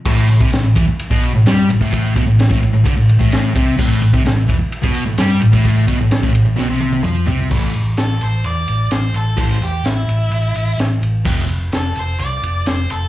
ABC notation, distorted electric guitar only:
X:1
M:4/4
L:1/16
Q:1/4=128
K:Am
V:1 name="Distorted electric guitar" clef=bass
A,,2 A,, C, A,, A,, E, z2 B,,2 A,, G,2 A,, A,,- | A,,2 B,, A,, A,, A,, A,, A,, D, A,,2 A,,3 C,2 | A,,2 A,, C, A,, A,, E, z2 B,,2 A,, G,2 A,, A,,- | A,,2 B,, A,, A,, A,, A,, A,, B,, C,3 F,2 C,2 |
[A,,E,A,]2 z12 z2 | [A,,E,A,]2 z12 z2 | [F,,C,F,]2 z12 z2 |]